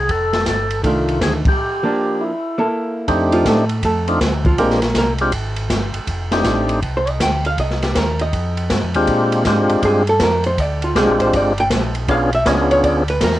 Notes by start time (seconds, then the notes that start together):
0.00 G#4
0.08 F1 A4, kick, ride
0.33 snare, ride
0.46 G1 A4, kick, snare, hi-hat pedal, ride
0.70 ride
0.83 C2 D#3 A3 D4 F4, kick, ride
1.09 ride
1.20 D2 G#4, kick, snare, hi-hat pedal, ride
1.44 D2 G4, kick, ride
1.83 F3 A#3 D4
2.21 E4
2.58 A#3 E4 A4
3.08 F2 A3 C4 D4 D#4 G4, kick, ride
3.32 F3 F4, ride
3.45 A2 A3 A4, kick, snare, hi-hat pedal, ride
3.69 ride
3.82 F2 A3 A4, kick, ride
4.08 A3 C4 D4 D#4 F4, ride
4.20 D2, kick, snare, hi-hat pedal, ride
4.45 F3 F4, kick, ride
4.58 A#1 G#3 A#3 C4 D4 F4 G4 A#4, kick, ride
4.70 snare
4.82 snare, ride
4.95 C2 A#3 A#4, kick, snare, hi-hat pedal, ride
5.18 G#3 C4 D4 F4 G4, ride
5.32 G#1, kick, ride
5.56 ride
5.69 G1, kick, snare, hi-hat pedal, ride
5.93 G1, ride
6.07 F1, kick, ride
6.32 A3 C4 D4 D#4 G4, snare, ride
6.44 A1, kick, snare, hi-hat pedal, ride
6.69 ride
6.82 C2, kick, ride
6.97 C5
7.07 D#5, ride
7.20 D2 G5, kick, snare, hi-hat pedal, ride
7.45 F5, ride
7.57 C2 D#5, kick, ride
7.70 snare
7.82 G4, snare, ride
7.95 D#2 A#4, kick, snare, hi-hat pedal, ride
8.19 D#5, ride
8.33 F2, kick, ride
8.57 ride
8.70 G2, kick, snare, hi-hat pedal, ride
8.83 F2
8.94 D#2 G#3 C4 D4 F4 G4, ride
9.07 A#2, kick, ride
9.32 ride
9.45 G#2 G#3 C4 D4 F4 G4, kick, snare, hi-hat pedal, ride
9.69 G#2, ride
9.82 G2 G#4, kick, ride
10.07 A4, ride
10.20 F2 A#4, kick, snare, hi-hat pedal, ride
10.44 C5, ride
10.58 D2 D5, kick, ride
10.82 F4, ride
10.95 C2 G#3 C4 D4 F4 G4 G#4, kick, snare, hi-hat pedal, ride
11.08 A#1
11.19 G#1 C5, ride
11.32 G1 D5, kick, ride
11.58 G5, ride
11.70 A#1, kick, snare, hi-hat pedal, ride
11.95 ride
12.07 B1 B3 C#4 D4 F4 G#4 F5, kick, ride
12.33 E5, ride
12.45 C#2 B3 C#4 D4 F4 G#4 D#5, kick, snare, hi-hat pedal, ride
12.71 C#5, ride
12.83 D2 D5, kick, ride
13.08 B4, ride
13.21 E2 A#4, kick, snare, hi-hat pedal, ride
13.33 snare